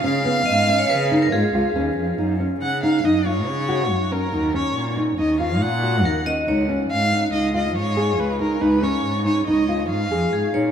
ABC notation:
X:1
M:5/4
L:1/16
Q:1/4=140
K:F#
V:1 name="Violin"
e16 z4 | z4 f2 e2 d2 c8 A2- | A2 c4 z2 d2 e2 f6 z2 | z4 e4 d2 d2 c4 B2 A2 |
B2 c4 c2 d4 e6 z2 |]
V:2 name="Vibraphone"
z4 d3 c B3 A G8 | z16 z4 | z16 A2 d2 | c3 z16 z |
z16 G2 c2 |]
V:3 name="Nylon-string guitar"
C2 B,4 C4 D2 E2 E2 C4 | D2 C4 D2 D2 E4 F4 C2 | D2 C4 D2 D2 E4 F4 C2 | D2 C4 D2 D2 E4 G4 D2 |
D2 C4 D2 D2 E4 G4 D2 |]
V:4 name="Cello" clef=bass
C,4 G,,4 C,4 G,,2 C,,2 D,,2 E,,2 | F,,4 C,4 F,,4 C,4 F,,2 z2 | D,,4 A,,4 D,,4 A,,4 D,,2 z2 | C,,4 G,,4 C,,4 G,,4 C,,2 z2 |
C,,4 G,,4 C,,4 G,,2 E,,2 G,,2 A,,2 |]